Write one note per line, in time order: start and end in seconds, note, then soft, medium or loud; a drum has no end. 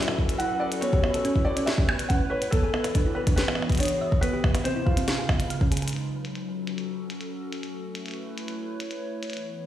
0.00 0.82 F#3 medium
0.00 1.50 C#4 medium
0.00 1.50 F#4 medium
0.00 1.42 A4 medium
0.00 5.94 B4 medium
0.00 0.40 E5 loud
0.00 closed hi-hat soft
0.08 0.14 A4 medium
0.08 percussion blips medium
0.18 0.25 C#4 medium
0.18 kick loud
0.29 closed hi-hat medium
0.38 0.46 E4 loud
0.38 0.61 F#5 loud
0.38 closed hi-hat soft
0.60 0.65 D5 loud
0.60 0.65 F#5 loud
0.72 closed hi-hat medium
0.81 2.52 A3 medium
0.81 0.89 B3 medium
0.81 1.47 C#5 loud
0.81 closed hi-hat medium
0.93 1.03 G4 loud
0.93 kick loud
1.00 1.10 B3 medium
1.00 3.09 E4 medium
1.00 percussion blips medium
1.14 1.18 A4 medium
1.14 closed hi-hat medium
1.25 1.32 C#4 loud
1.25 closed hi-hat soft
1.35 1.39 E4 medium
1.35 kick loud
1.43 1.53 A4 medium
1.43 3.21 B4 medium
1.43 1.67 D5 medium
1.49 3.21 C#5 medium
1.57 1.61 C#4 loud
1.57 closed hi-hat medium
1.66 2.11 E5 loud
1.66 snare loud
1.66 closed hi-hat soft
1.78 1.85 G4 medium
1.78 kick loud
1.89 1.95 B3 medium
1.89 percussion blips medium
1.99 closed hi-hat medium
2.09 2.17 C#4 loud
2.09 2.14 F#5 loud
2.09 kick loud
2.09 closed hi-hat medium
2.30 2.52 B4 medium
2.30 2.35 C#5 loud
2.42 closed hi-hat medium
2.51 4.23 E3 medium
2.51 2.59 B3 medium
2.51 3.18 A4 loud
2.51 kick loud
2.51 closed hi-hat medium
2.63 2.73 G#4 loud
2.71 4.57 B3 medium
2.71 2.80 B3 medium
2.71 4.57 F#4 medium
2.71 percussion blips medium
2.84 2.88 B4 medium
2.84 closed hi-hat medium
2.84 percussion blips soft
2.95 3.02 D4 loud
2.95 kick loud
2.95 closed hi-hat soft
3.06 3.10 E4 medium
3.15 3.20 B4 medium
3.15 3.23 B4 medium
3.27 3.31 D4 loud
3.27 4.23 G#4 medium
3.27 kick loud
3.27 closed hi-hat medium
3.36 3.76 B4 medium
3.36 snare loud
3.36 closed hi-hat medium
3.48 3.55 G#4 medium
3.48 percussion blips medium
3.55 3.66 B3 medium
3.55 percussion blips soft
3.62 percussion blips soft
3.69 kick loud
3.69 closed hi-hat soft
3.72 closed hi-hat soft
3.75 closed hi-hat soft
3.78 3.87 D4 loud
3.78 4.23 C#5 medium
3.78 closed hi-hat soft
3.80 closed hi-hat medium
3.83 closed hi-hat soft
3.85 closed hi-hat medium
3.88 closed hi-hat medium
4.01 4.05 E5 loud
4.12 kick loud
4.21 5.08 C3 medium
4.21 4.29 B3 medium
4.21 4.66 B4 loud
4.21 closed hi-hat medium
4.33 4.43 G4 loud
4.44 4.51 B3 medium
4.44 kick loud
4.44 percussion blips medium
4.55 4.59 B4 medium
4.55 closed hi-hat medium
4.55 percussion blips soft
4.60 5.08 G3 medium
4.60 5.08 D4 medium
4.60 5.08 E4 medium
4.60 4.86 C5 medium
4.65 4.72 C4 loud
4.65 closed hi-hat medium
4.76 4.80 E4 medium
4.85 5.67 F4 medium
4.85 4.93 B4 medium
4.85 kick loud
4.97 5.01 C4 loud
4.97 closed hi-hat medium
5.08 5.93 C#3 medium
5.08 snare loud
5.08 closed hi-hat medium
5.18 5.25 G#4 medium
5.29 5.39 B3 medium
5.29 kick loud
5.29 percussion blips medium
5.36 5.93 G#3 medium
5.36 closed hi-hat medium
5.46 5.93 D#4 medium
5.46 5.93 F4 medium
5.50 5.57 F5 loud
5.50 closed hi-hat medium
5.61 5.65 C#4 medium
5.61 kick loud
5.72 5.76 G#4 medium
5.72 closed hi-hat medium
5.77 closed hi-hat medium
5.82 5.89 G#4 medium
5.82 closed hi-hat soft
5.88 closed hi-hat medium
5.89 closed hi-hat soft
5.93 7.63 F#3 medium
5.93 closed hi-hat medium
5.96 closed hi-hat medium
6.25 8.31 A4 medium
6.25 closed hi-hat medium
6.29 8.31 C#4 medium
6.35 8.31 F#4 medium
6.35 closed hi-hat medium
6.67 closed hi-hat medium
6.78 closed hi-hat medium
7.10 closed hi-hat medium
7.21 closed hi-hat medium
7.53 closed hi-hat medium
7.63 9.33 A3 medium
7.63 closed hi-hat medium
7.86 9.66 E4 medium
7.91 9.66 B4 medium
7.95 closed hi-hat medium
8.06 closed hi-hat soft
8.08 closed hi-hat soft
8.11 closed hi-hat soft
8.14 closed hi-hat soft
8.38 9.66 C#5 medium
8.38 closed hi-hat medium
8.48 closed hi-hat medium
8.80 closed hi-hat medium
8.91 closed hi-hat medium
9.23 closed hi-hat medium
9.30 closed hi-hat soft
9.33 9.66 E3 medium
9.33 closed hi-hat medium
9.37 9.66 B3 medium
9.37 closed hi-hat soft
9.55 9.66 F#4 medium